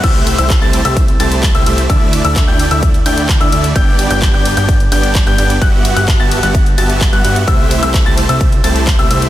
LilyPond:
<<
  \new Staff \with { instrumentName = "Grand piano" } { \time 4/4 \key c \lydian \tempo 4 = 129 e'''8. e'''8 a'''8 e'''8 r16 a'''8. e'''16 e'''8 | e'''8. e'''8 g'''8 e'''8 r16 g'''8. e'''16 e'''8 | g'''8. g'''8 g'''8 g'''8 r16 g'''8. g'''16 g'''8 | fis'''8. fis'''8 a'''8 fis'''8 r16 a'''8. fis'''16 fis'''8 |
e'''8. e'''8 a'''8 e'''8 r16 a'''8. e'''16 e'''8 | }
  \new Staff \with { instrumentName = "Supersaw synth" } { \time 4/4 \key c \lydian <a e' g' c'' e''>8. <a e' g' c'' e''>8 <a e' g' c'' a''>8 <a e' g' c'' e''>8 r16 <a e' g' c'' a''>8. <a e' g' c'' e''>16 <a e' g' c'' e''>8 | <a d' e' d'' e''>8. <a d' e' d'' e''>8 <a d' e' d'' g''>8 <a d' e' d'' e''>8 r16 <a d' e' d'' g''>8. <a d' e' d'' e''>16 <a d' e' d'' e''>8 | <b d' g' d'' g''>8. <b d' g' d'' g''>8 <b d' g' d'' g''>8 <b d' g' d'' g''>8 r16 <b d' g' d'' g''>8. <b d' g' d'' g''>16 <b d' g' d'' g''>8 | <b fis' g' e'' fis''>8. <b fis' g' e'' fis''>8 <b fis' g' e'' a''>8 <b fis' g' e'' fis''>8 r16 <b fis' g' e'' a''>8. <b fis' g' e'' fis''>16 <b fis' g' e'' fis''>8 |
<a e' g' c'' e''>8. <a e' g' c'' e''>8 <a e' g' c'' a''>8 <a e' g' c'' e''>8 r16 <a e' g' c'' a''>8. <a e' g' c'' e''>16 <a e' g' c'' e''>8 | }
  \new Staff \with { instrumentName = "Analog synth bass" } { \clef bass \time 4/4 \key c \lydian c,8. c,8 c,8 c,8. c,8. c,16 c,8 | d,8. d,8 d,8 d,8. d,8. d,16 d,8 | g,,8. g,,8 g,,8 g,,8. g,,8. g,16 g,,8 | g,,8. g,,8 g,,8 g,,8. g,,8. g,16 g,8 |
c,8. c,8 c,8 c,8. c,8. c,16 c,8 | }
  \new DrumStaff \with { instrumentName = "Drums" } \drummode { \time 4/4 <cymc hh bd cymr>8 <hho cymr>16 hh16 <hc hh bd cymr>8 <hho cymr>16 hh16 <hh bd cymr>16 hh16 <hho cymr>16 hh16 <hc hh bd cymr>16 hh16 <hho cymr>16 hh16 | <hh bd cymr>8 <hho cymr>16 hh16 <hc hh bd cymr>8 <hho cymr>16 hh16 <hh bd cymr>16 hh16 <hho cymr>16 hh16 <hc hh bd cymr>16 hh16 <hho cymr>16 hh16 | <hh bd cymr>8 <hho cymr>16 hh16 <hc hh bd cymr>8 <hho cymr>16 hh16 <hh bd cymr>16 hh16 <hho cymr>16 hh16 <hc hh bd cymr>16 hh16 <hho cymr>16 hh16 | <hh bd cymr>8 <hho cymr>16 hh16 <hc hh bd cymr>8 <hho cymr>16 hh16 <hh bd cymr>16 hh16 <hho cymr>16 hh16 <hc hh bd cymr>16 hh16 <hho cymr>16 hh16 |
<hh bd cymr>8 <hho cymr>16 hh16 <hc hh bd cymr>8 <hho cymr>16 hh16 <hh bd cymr>16 hh16 <hho cymr>16 hh16 <hc hh bd cymr>16 hh16 <hho cymr>16 hh16 | }
>>